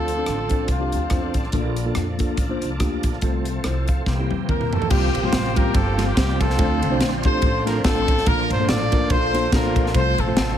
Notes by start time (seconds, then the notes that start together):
Already playing: D2 D3 F3 C4 D4 F4 A4
0.08 closed hi-hat
0.17 C4 D4 F4 A4
0.26 A1, cross-stick, closed hi-hat
0.49 C4 D4 F4 A4, kick, closed hi-hat
0.68 C2 A3 C4 F4, kick, closed hi-hat
0.79 C4 D4 F4 G4
0.92 D2, closed hi-hat
1.10 E2 C4 D4 F4 C5, kick, cross-stick, closed hi-hat
1.34 A1, kick, closed hi-hat
1.44 cross-stick
1.52 A#1 A#2 A#3 D4 F4 A4, kick, closed hi-hat
1.76 closed hi-hat
1.85 A#3 D4 F4 A4
1.95 F2, cross-stick, closed hi-hat
2.18 A#3 D4 F4 A4, kick, closed hi-hat
2.37 A1, kick, closed hi-hat
2.49 A#3 D4 F4 C5
2.61 C2, cross-stick, closed hi-hat
2.79 D2 A#3 D4 F4 G4, kick, cross-stick, closed hi-hat
3.03 A#1, kick, closed hi-hat
3.13 cross-stick
3.21 C2 C3 A3 C4 F4 A4, kick, closed hi-hat
3.45 C4 A4, closed hi-hat
3.64 C2 E4 C5, cross-stick, closed hi-hat
3.88 A4 F5, kick, closed hi-hat
4.06 C2 C3 E3 A#3 G4, kick, snare
4.19 A#3 C4 E4 G4
4.31 F2, high tom
4.49 E2 A#3 C4 E4 A#4, kick, mid tom
4.61 mid tom
4.72 A4, floor tom
4.82 floor tom
4.90 C2 C3 F3 G3 A#3 C4 F4 G4, kick, crash
5.15 A#1, ride
5.23 G3 A#3 C4 F4 G4 C5
5.33 A1, snare, ride
5.55 G3 A#3 C4 F4 G4 A#4, kick, ride
5.74 G1 F4 A4, kick, ride
5.97 G3 A#3 C4 F4 G4, snare, ride
6.08 A#3 G4
6.16 C2 G3 A#3 C4 F4 G4, kick, snare, ride
6.40 C4 F4 A4, kick, ride
6.50 snare
6.57 D2 D3 A3 C4 D4 F4 A4 C5, kick, ride
6.82 C2, ride
6.90 A3 C4 D4 F4 C5
7.00 A#1, snare, ride
7.23 A3 C4 D4 F4 G4 A4 C5, kick, ride
7.42 A1, kick, ride
7.66 A3 C4 D4 F4 A4 A#4, snare, ride
7.84 A1 A3 C4 D4 F4 A4, kick, snare, ride
8.08 kick, ride
8.18 snare
8.26 A#1 A#2 F3 A#3 D4 F4 A4 A#4, kick, ride
8.50 G1 C5, ride
8.59 A#3 D4 F4 A4 C5
8.69 A1 F4 A4 D5, snare, ride
8.91 A#3 D4 F4 A4 A#4, kick, ride
9.10 A#1 F4 A4 C5, kick, ride
9.33 A#3 D4 F4 A4 C5, snare, ride
9.51 A#1 A#3 D4 F4 A4 A#4 C5, kick, snare, ride
9.76 kick, ride
9.86 snare
9.93 C2 C3 F3 A3 C4 F4 A4 C5, kick, ride
10.18 A#1 C4 F4 A4, ride
10.27 A3 C4 F4 A4 C5
10.36 A1, snare, ride